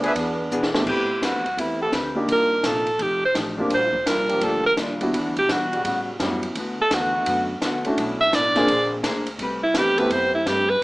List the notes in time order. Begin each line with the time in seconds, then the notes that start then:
Already playing: D2 F3 A3 B3 D4
0.03 G#4 B4 D5 E5, ride
0.15 E2 E3 B3 D4, kick, ride
0.19 G#4
0.50 B2 E3 B3 D4 G#4, hi-hat pedal
0.63 snare
0.74 A3 B3 C4 E4 G4, snare
0.86 A2 A3 C4 G4 B4, kick, crash
1.22 F#2 A3 C4 F#4 G4 B4, kick, snare, hi-hat pedal, ride
1.34 E2
1.45 C2, ride
1.57 E2 A3 C4 E4 G4 B4, kick, ride
1.80 C3 A3 B3 G4 A4
1.92 D2 A3 C4 G4 B4, kick, snare, hi-hat pedal, ride
2.15 A#3 D4 D#4 F4 G4
2.28 C2 C3 A#3 D#4 F4 A#4, kick, ride
2.63 A#1 C3 A#3 D#4 F4 A4, kick, snare, hi-hat pedal, ride
2.87 ride
2.99 F1 F3 A3 D#4 G4, kick, ride
3.25 C5
3.34 A1 F3 A3 D#4 G4, kick, snare, hi-hat pedal, ride
3.57 F3 A#3 C4 D4 F4 G4
3.70 A#1 A#2 G3 D4, kick, ride
3.74 F4 C5
3.93 kick
4.06 C2 A#2 G3 D4 A#4, kick, snare, hi-hat pedal, ride
4.10 F4
4.28 F3 A#3 D4 G4, ride
4.41 D2 A#2 G3 D4 A4, kick, ride
4.46 F4
4.66 A#4
4.77 D#2 A#2 G3 D4, kick, snare, hi-hat pedal, ride
4.81 F4
5.01 G3 B3 D4 E4 F#4, ride
5.13 E2 E3 G3 D4, kick, ride
5.18 F#4
5.26 D2
5.36 B1 G4, ride
5.49 B2 E3 G3 D4 F#4, kick, snare, hi-hat pedal, ride
5.72 C#3 G3 B3 F#4, ride
5.85 A2 G3 C#4 F#4, kick, ride
6.20 F#2 A2 G3 B3 C#4 E4 F#4 G4, kick, snare, hi-hat pedal, ride
6.43 ride
6.55 D2 D3 A3 B3 F#4, kick, ride
6.79 A4, muted upright bass stroke
6.91 E2 D3 A3 B3 F#4, kick, snare, hi-hat pedal, ride
7.14 D3 A3 B3 F#4
7.26 F#2 D3 A3 B3 F#4, kick, ride
7.62 D2 D3 A3 B3 F#4, kick, snare, hi-hat pedal, ride
7.85 A3 C#4 D4 E4 F#4, muted upright bass stroke, ride
7.97 B1 B2 A3 D4, kick, ride
8.01 E4
8.21 E5
8.32 A1 B2 A3 D4 E4 D5, kick, snare, hi-hat pedal, ride
8.55 D3 A#3 C4 D4 F4 G#4, snare, ride
8.68 A#1 A#3 D4 G#4, kick, ride
8.72 C5
9.03 D2 A#3 D4 G#4 C5, kick, snare, hi-hat pedal, ride
9.26 ride
9.38 C2 A3 C4 G4, kick, ride
9.43 B4
9.63 E4
9.74 E2 A3 C4 G4 B4, kick, snare, hi-hat pedal, ride
9.97 C3 A3 B3 C4 E4 G4 B4, ride
10.10 F#2 A3 C4 G4 C5, kick, ride
10.15 B4
10.34 E4
10.46 G2 A3 C4 G4 B4, kick, snare, hi-hat pedal, ride
10.70 B4